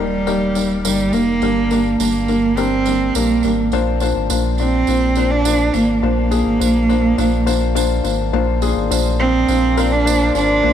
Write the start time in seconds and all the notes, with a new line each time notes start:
Already playing: D#1 D#3 G3 A#3 D#4 A#4
0.00 G3
0.27 G3 A#3 D#4 A#4, tambourine
0.55 G3 A#3 D#4 A#4, tambourine
0.84 G1 G3 A#3 D#4 A#4, tambourine
1.13 F1 G3 A#3 D#4 A#4, tambourine
1.42 G1 G2 G3 A#3 D4 A#4, tambourine
1.71 G3 A#3 D4 A#4, tambourine
1.99 G1 G3 A#3 D4 G4, tambourine
2.28 G3 A#3 D4 A#4, tambourine
2.57 G3 A#3 C4 D4 A#4, tambourine
2.86 G3 A#3 D4 A#4, tambourine
3.15 A#1 G3 A#3 D4 A#4, tambourine
3.43 G#1 G3 A#3 D4 A#4, tambourine
3.72 A#1 A#2 A#3 D4 F4 C5, tambourine
4.00 A#3 D4 F4 C5, tambourine
4.16 G#1
4.30 A#1 A#3 D4 F4 C5, tambourine
4.58 A#3 C4 D4 F4 D5, tambourine
4.87 A#1 A#3 D4 F4 C5, tambourine
5.15 A#3 D4 F4 C5, tambourine
5.30 D4
5.45 A#3 D4 F4 C5, tambourine
5.73 G#1 A#3 D4 F4 C5, tambourine
6.02 A#1 A#2 A#3 D4 F4 C5
6.31 A#3 D4 F4 G#4, tambourine
6.46 G#1
6.60 A#1 A#3 D4 F4 C5, tambourine
6.89 A#3 D4 F4 C5, tambourine
7.18 A#1 A#3 D4 F4 C5, tambourine
7.46 A#3 D4 F4 C5, tambourine
7.75 A#3 D4 F4 C5, tambourine
8.04 G#1 A#3 D4 F4 C5, tambourine
8.33 A#1 A#2 A#3 D4 F4 A#4 C5 D5 F5 C6
8.62 A#3 D4 F4 G#4, tambourine
8.76 G#1
8.90 A#1 A#3 D4 F4 C5, tambourine
9.20 A#3 C4 D4 F4 C5
9.48 A#1 A#3 D4 F4 C5, tambourine
9.77 A#3 D4 F4 A#4, tambourine
9.92 D4
10.05 A#3 D4 F4 C5, tambourine
10.34 G#1 A#3 D4 F4 C5, tambourine
10.63 A#1 A#2 A#3 D4 F4 C5 G5